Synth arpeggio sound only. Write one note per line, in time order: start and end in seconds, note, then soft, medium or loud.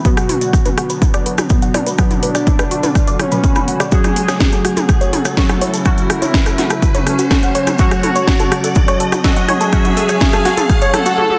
0.17 0.21 F#4 medium
0.29 0.36 B4 medium
0.41 0.51 D5 medium
0.66 0.70 B4 loud
0.78 0.82 F#4 loud
0.90 0.94 B4 medium
1.14 1.24 D5 loud
1.26 1.33 B4 medium
1.38 1.45 F#4 medium
1.62 1.72 F#5 medium
1.74 1.78 D5 loud
1.87 1.90 B4 medium
2.11 2.15 F#4 medium
2.23 2.29 B4 medium
2.35 2.45 D5 medium
2.59 2.63 B4 loud
2.71 2.75 F#4 loud
2.83 2.87 B4 medium
3.07 3.17 D5 loud
3.20 3.26 F#4 medium
3.32 3.42 B5 medium
3.56 3.62 B5 medium
3.68 3.75 F#5 medium
3.80 3.90 D5 loud
4.04 4.08 F#4 medium
4.16 4.23 A4 medium
4.28 4.38 C#5 medium
4.53 4.57 A4 loud
4.65 4.69 F#4 loud
4.77 4.81 A4 medium
5.01 5.11 C#5 loud
5.13 5.20 A4 medium
5.25 5.32 F#4 medium
5.37 5.44 A4 medium
5.49 5.59 F#5 medium
5.61 5.65 C#5 loud
5.74 5.78 A4 medium
5.98 6.02 F#4 medium
6.10 6.17 A4 medium
6.22 6.32 C#5 medium
6.46 6.50 A4 loud
6.58 6.62 F#4 loud
6.70 6.74 A4 medium
6.95 7.04 C#5 loud
7.07 7.13 A4 medium
7.19 7.25 F#4 medium
7.31 7.37 A4 medium
7.43 7.53 F#5 medium
7.55 7.59 C#5 loud
7.67 7.71 A4 medium
7.91 7.95 F#4 medium
8.03 8.10 A4 medium
8.16 8.25 C#5 medium
8.40 8.44 A4 loud
8.52 8.56 F#4 loud
8.64 8.68 A4 medium
8.88 8.98 C#5 loud
9.00 9.07 A4 medium
9.12 9.19 F#4 medium
9.24 9.31 A4 medium
9.37 9.46 F#5 medium
9.49 9.53 C#5 loud
9.61 9.65 A4 medium
9.85 9.89 F#4 medium
9.97 10.04 A4 medium
10.09 10.19 C#5 medium
10.33 10.37 A4 loud
10.45 10.49 F#4 loud
10.58 10.61 A4 medium
10.82 10.92 C#5 loud
10.94 11.00 A4 medium
11.06 11.12 F#4 medium